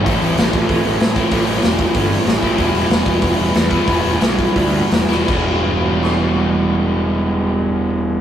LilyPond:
<<
  \new Staff \with { instrumentName = "Overdriven electric guitar" } { \time 4/4 \key e \minor \tempo 4 = 181 <a, e a c' e'>2.~ <a, e a c' e'>8 <a, e a c' e'>8 | <a, e a c' e'>2.~ <a, e a c' e'>8 <a, e a c' e'>8 | <e g b e'>2.~ <e g b e'>8 <e g b e'>8 | <e g b e'>2.~ <e g b e'>8 <e g b e'>8 |
<e g b e'>1~ | <e g b e'>1 | }
  \new Staff \with { instrumentName = "Overdriven electric guitar" } { \time 4/4 \key e \minor <a, e a c' e'>2 <a, e a c' e'>2 | <a, e a c' e'>2 <a, e a c' e'>2 | <e g b e'>2 <e g b e'>2 | <e g b e'>2 <e g b e'>2 |
<e g b e'>1~ | <e g b e'>1 | }
  \new Staff \with { instrumentName = "Picked electric bass" } { \clef bass \time 4/4 \key e \minor a,,8 a,,8 a,,8 a,,8 a,,8 a,,8 a,4 | a,,8 a,,8 e,,4 g,,4 a,,8 a,,8 | e,,8 e,,8 e,,8 e,,8 e,,8 e,,8 e,4 | e,,8 e,,8 b,,4 d,4 e,,8 e,,8 |
e,,1~ | e,,1 | }
  \new DrumStaff \with { instrumentName = "Drums" } \drummode { \time 4/4 <hho bd>8 hho8 <hho sn>8 <hho bd>8 <hho bd>8 hho8 <hho sn>8 <hho bd>8 | <hho bd>8 hho8 <hho sn>8 <hho bd>8 <hho bd>8 hho8 <hho sn>8 <hho bd>8 | <hho bd>8 hho8 <hho sn>8 <hho bd>8 <hho bd>8 hho8 <hho sn>8 <hho bd>8 | <hho bd>8 hho8 <hho sn>8 <hho bd>8 <hho bd>8 hho8 <hho sn>8 sn8 |
<cymc bd>4 r4 ss4 r4 | r4 r4 r4 r4 | }
>>